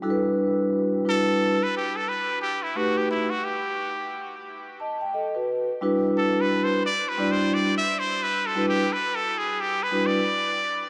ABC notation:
X:1
M:4/4
L:1/16
Q:"Swing 16ths" 1/4=88
K:Em
V:1 name="Muted trumpet"
z6 A3 B G A B2 G E | F G E F G6 z6 | z4 (3A2 B2 c2 (3d2 B2 c2 (3d2 e2 c2 | (3B2 A2 G2 (3B2 A2 ^G2 (3=G2 B2 d2- d4 |]
V:2 name="Vibraphone"
[G,DEFAB]6 [G,DEFB]2 z8 | [A,^DFGB]2 z8 z2 [^da] g [Ad] [FB]- | [FB] z [G,DEFB]6 z2 [G,DEFd]2 z4 | z2 [G,DEFB]2 z6 [G,DEFB]2 z4 |]